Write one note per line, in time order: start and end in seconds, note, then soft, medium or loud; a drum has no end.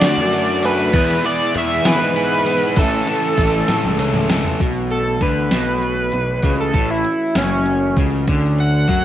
0.00 0.93 D3 medium
0.00 0.19 D3 loud
0.00 0.91 F#3 medium
0.00 0.93 A3 medium
0.00 0.32 A3 medium
0.00 0.33 D4 medium
0.00 0.93 E4 medium
0.00 0.33 F#4 loud
0.00 0.67 D5 loud
0.00 0.60 A5 medium
0.00 snare loud
0.00 ride loud
0.18 0.94 F#2 loud
0.33 0.63 A3 medium
0.33 0.63 D4 medium
0.33 0.64 F#4 medium
0.33 ride medium
0.63 0.93 A3 medium
0.63 0.93 D4 medium
0.63 0.93 F#4 loud
0.63 1.25 B4 loud
0.63 1.25 G#5 medium
0.63 ride medium
0.93 1.18 E2 loud
0.93 2.76 B2 medium
0.93 1.24 E3 loud
0.93 4.57 E3 medium
0.93 2.76 G#3 medium
0.93 1.24 B3 loud
0.93 4.57 E4 medium
0.93 1.25 E4 loud
0.93 1.25 G#4 loud
0.93 kick loud
0.93 crash loud
1.24 1.55 E3 medium
1.24 1.54 B3 medium
1.24 1.56 E4 medium
1.24 1.56 G#4 loud
1.24 1.54 D5 loud
1.24 1.54 B5 medium
1.24 ride medium
1.55 1.79 E2 loud
1.55 1.85 E3 medium
1.55 1.85 B3 medium
1.55 1.86 E4 medium
1.55 1.85 G#4 loud
1.55 1.85 E5 loud
1.55 1.85 C#6 medium
1.55 ride medium
1.85 2.16 E3 medium
1.85 2.01 E3 loud
1.85 2.16 B3 medium
1.85 2.17 E4 loud
1.85 2.16 G#4 medium
1.85 2.81 B4 loud
1.85 2.74 G#5 medium
1.85 snare loud
1.85 ride loud
2.01 2.78 G#2 loud
2.16 2.45 E3 medium
2.16 2.45 B3 medium
2.16 2.46 E4 loud
2.16 2.46 G#4 loud
2.16 ride medium
2.46 2.76 E3 medium
2.46 2.75 B3 medium
2.46 2.77 E4 medium
2.46 2.76 G#4 loud
2.46 ride medium
2.76 3.01 A1 loud
2.76 4.59 C#3 medium
2.76 3.06 E3 medium
2.76 3.06 A3 medium
2.76 4.59 A3 medium
2.76 3.07 C#4 loud
2.76 3.07 A4 loud
2.76 4.31 A4 medium
2.76 4.31 E5 medium
2.76 kick loud
2.76 ride medium
3.07 3.36 E3 medium
3.07 3.37 A3 medium
3.07 3.38 C#4 medium
3.07 3.38 A4 medium
3.07 ride medium
3.38 3.62 A1 loud
3.38 3.67 E3 medium
3.38 3.68 A3 medium
3.38 3.68 C#4 medium
3.38 3.68 A4 medium
3.38 kick medium
3.38 ride medium
3.68 3.86 A2 loud
3.68 3.97 E3 medium
3.68 3.98 A3 medium
3.68 3.98 C#4 medium
3.68 3.99 A4 loud
3.68 snare medium
3.68 ride loud
3.84 4.43 C#2 medium
3.84 high tom medium
3.98 4.28 E3 medium
3.98 4.29 A3 medium
3.98 4.29 C#4 loud
3.98 4.30 A4 loud
3.98 mid tom medium
3.98 ride medium
4.14 mid tom medium
4.29 4.59 E3 medium
4.29 4.59 A3 medium
4.29 4.59 C#4 medium
4.29 4.59 A4 medium
4.29 snare loud
4.29 ride medium
4.45 floor tom medium
4.60 5.18 B1 medium
4.60 5.21 B2 loud
4.60 8.24 E3 medium
4.60 9.05 A3 medium
4.60 6.42 B3 medium
4.60 6.41 F#4 medium
4.60 kick medium
4.60 closed hi-hat medium
4.91 5.21 A4 medium
4.91 closed hi-hat medium
5.21 5.50 D2 medium
5.21 5.51 D3 medium
5.21 6.56 B4 medium
5.21 kick medium
5.21 closed hi-hat medium
5.51 6.10 B1 medium
5.51 6.12 B2 loud
5.51 snare loud
5.51 closed hi-hat medium
5.82 closed hi-hat medium
6.12 6.42 B1 medium
6.12 6.38 B2 medium
6.12 closed hi-hat medium
6.42 6.72 C#2 medium
6.42 6.74 C#3 loud
6.42 9.05 C#4 medium
6.42 9.05 F#4 medium
6.42 kick medium
6.42 closed hi-hat medium
6.60 6.90 A4 medium
6.73 7.03 A1 medium
6.73 7.05 A2 loud
6.73 kick loud
6.73 closed hi-hat medium
6.91 7.35 E4 medium
7.04 closed hi-hat medium
7.35 7.93 F#1 medium
7.35 7.97 F#2 medium
7.35 7.96 C#4 loud
7.35 snare loud
7.35 closed hi-hat medium
7.66 closed hi-hat medium
7.96 8.26 C#2 medium
7.96 8.27 C#3 loud
7.96 kick loud
7.96 closed hi-hat medium
8.26 8.85 D2 medium
8.26 9.05 D3 medium
8.26 8.88 D3 loud
8.26 kick loud
8.26 closed hi-hat medium
8.58 9.05 F#5 loud
8.58 closed hi-hat medium
8.89 9.05 F#2 medium
8.89 9.05 F#3 medium
8.89 kick medium
8.89 closed hi-hat medium